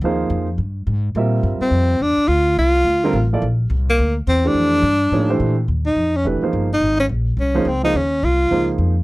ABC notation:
X:1
M:4/4
L:1/8
Q:"Swing" 1/4=212
K:Bbdor
V:1 name="Upright piano"
[F,B,EAc]3 z4 z | [G,CFB_f]4- [G,C=FB_f] z3 | z4 z [=D,G,CFB] z [F,B,_F=A=d] | z6 z [_F,=A,=DGc]- |
[_F,=A,=DGc]2 z2 [=F,B,E_A_d] [_F,=A,=DGc]2 z | [K:Ebmix] z4 [_F,=A,=DG_c] [=F,B,E_A=c]2 z | z4 z [F,B,EAc] z [F,B,EAc] | z4 [F,B,EAc]3 z |]
V:2 name="Tenor saxophone"
z8 | z3 C3 =D2 | F2 F4- F z | z3 B,2 z C =D- |
=D6 z2 | [K:Ebmix] z E2 D z3 E- | E D z2 D2 C E | D2 F3 z3 |]
V:3 name="Upright bass" clef=bass
E,,2 F,,2 G,,2 A,,2 | B,,2 G,, z F,,2 _F,, z | =D,,2 C,,2 D,,2 =A,,,2 | B,,,2 C,,2 =D,,2 _F,,2 |
F,,2 G,,2 =A,,2 B,,2 | [K:Ebmix] E,,2 F,,2 F,,, z G,,,2 | A,,,2 B,,,2 C,,2 D,,2 | E,,2 C,,2 D,,2 F,,2 |]